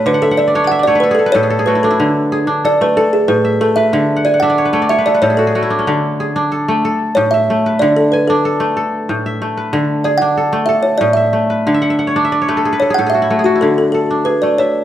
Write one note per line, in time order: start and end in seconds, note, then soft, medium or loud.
0.00 0.11 A2 medium
0.00 0.88 A3 medium
0.00 0.29 D4 medium
0.00 0.41 A4 medium
0.00 0.95 B4 medium
0.00 0.22 E5 medium
0.06 1.08 D3 medium
0.06 0.23 B4 medium
0.14 0.31 F#5 medium
0.22 0.39 A4 medium
0.22 0.38 E5 medium
0.31 1.28 F#5 medium
0.37 0.53 D5 medium
0.37 0.71 E5 medium
0.48 0.64 D5 medium
0.55 0.93 D4 medium
0.55 0.85 C#5 medium
0.64 0.79 D5 medium
0.64 0.86 F#5 loud
0.71 1.75 E5 medium
0.79 1.90 D5 medium
0.83 1.90 C#5 medium
0.83 1.00 D5 loud
0.88 1.17 A3 medium
0.95 1.26 B4 medium
1.00 1.18 A4 medium
1.00 1.08 B4 medium
1.11 1.41 G#4 medium
1.11 1.32 A4 medium
1.19 1.35 A4 medium
1.26 2.49 B4 medium
1.32 2.05 A2 medium
1.32 1.50 A4 medium
1.32 1.67 C#5 loud
1.43 1.59 G#4 medium
1.50 2.38 A4 medium
1.59 2.32 G#4 medium
1.66 2.38 A3 medium
1.66 3.14 F#4 medium
1.66 1.74 B4 medium
1.75 1.90 E4 medium
1.83 2.47 D4 medium
1.83 1.98 A4 medium
1.91 3.47 E4 medium
2.00 3.01 D3 medium
2.32 2.87 G#4 medium
2.47 4.15 D4 medium
2.65 2.96 A4 medium
2.65 2.81 D5 medium
2.81 3.60 A3 medium
2.81 2.96 B4 medium
2.97 4.31 A4 medium
2.97 3.12 A4 medium
3.13 3.29 G#4 medium
3.28 3.98 A2 medium
3.28 3.62 B4 medium
3.45 4.42 E5 medium
3.61 4.31 A3 medium
3.61 3.76 A4 medium
3.76 4.65 B4 medium
3.76 3.91 E5 medium
3.93 4.95 D3 medium
4.16 4.33 F#5 medium
4.25 4.42 D5 medium
4.25 4.79 G#5 medium
4.34 5.30 F#5 medium
4.40 4.79 D4 medium
4.40 5.46 E5 medium
4.40 4.90 F#5 loud
4.50 4.79 D5 medium
4.58 4.72 C#5 medium
4.65 4.98 B4 medium
4.73 5.36 A3 medium
4.73 4.90 C#5 medium
4.82 5.85 D5 medium
4.89 5.76 C#5 medium
4.89 5.06 E5 medium
4.99 5.14 B4 medium
5.06 5.22 A4 medium
5.06 5.13 D5 medium
5.14 6.37 B4 medium
5.22 5.91 A2 medium
5.22 5.53 A4 medium
5.22 5.38 C#5 medium
5.30 5.47 G#4 medium
5.37 5.55 F#4 medium
5.37 6.14 A4 medium
5.47 6.20 G#4 medium
5.55 6.26 A3 medium
5.55 7.01 F#4 medium
5.62 7.19 E4 medium
5.70 6.35 D4 medium
5.79 6.42 C#4 medium
5.87 6.88 D3 medium
6.20 6.74 G#4 medium
6.36 8.04 D4 medium
6.52 6.84 A4 medium
6.68 7.50 A3 medium
6.85 8.19 A4 medium
7.15 7.85 A2 medium
7.15 7.32 C#5 loud
7.31 7.76 E5 loud
7.31 8.37 E5 medium
7.50 8.19 A3 medium
7.66 8.89 B4 medium
7.79 8.81 D3 loud
7.79 7.96 D5 medium
7.96 8.13 A4 medium
8.12 8.27 B4 medium
8.12 8.66 G#5 medium
8.27 9.98 D4 medium
8.27 9.04 A4 medium
8.45 8.76 A4 medium
8.60 9.41 A3 medium
8.77 10.11 A4 medium
9.09 9.78 A2 medium
9.26 10.29 E5 medium
9.42 10.11 A3 medium
9.57 10.80 B4 medium
9.73 10.75 D3 medium
10.04 10.59 G#4 medium
10.04 10.21 D5 medium
10.18 10.69 F#5 loud
10.22 11.90 D4 medium
10.37 10.68 A4 medium
10.53 11.32 A3 medium
10.66 12.00 A4 medium
10.66 10.83 E5 medium
10.83 10.99 C#5 medium
10.98 11.72 A2 medium
10.98 11.06 D5 medium
11.13 11.92 E5 medium
11.13 11.74 E5 medium
11.33 12.48 A3 medium
11.50 12.48 B4 medium
11.67 12.68 D3 medium
11.74 11.90 E5 medium
11.82 11.98 F#5 medium
11.90 12.24 E5 medium
11.99 12.95 F#5 medium
12.07 12.38 C#5 medium
12.16 13.84 D4 medium
12.16 12.32 D5 medium
12.25 13.28 E5 medium
12.32 13.43 D5 medium
12.42 13.56 C#5 medium
12.48 12.71 A3 medium
12.48 12.72 B4 medium
12.57 12.81 A4 medium
12.65 12.88 G#4 medium
12.73 13.96 B4 medium
12.80 12.98 A4 medium
12.80 12.96 C#5 medium
12.90 13.06 G#4 medium
12.94 13.66 A2 medium
12.94 13.12 F#5 loud
12.99 13.45 A4 medium
13.06 13.36 G#4 medium
13.06 13.56 E5 medium
13.15 13.30 F#4 medium
13.22 13.55 E4 medium
13.30 14.32 A3 medium
13.30 13.45 F#4 medium
13.39 14.00 G#4 medium
13.44 13.61 F#4 medium
13.44 14.84 F#4 medium
13.56 14.84 E4 medium
13.61 14.63 D3 medium
13.61 13.68 A4 medium
13.78 13.91 A4 medium
13.92 14.26 A4 medium
13.92 14.84 A4 medium
14.11 14.84 D4 medium
14.25 14.84 G#4 medium
14.25 14.42 B4 medium
14.42 14.84 A3 medium
14.42 14.57 D5 medium
14.58 14.84 C#5 medium
14.58 14.84 E5 medium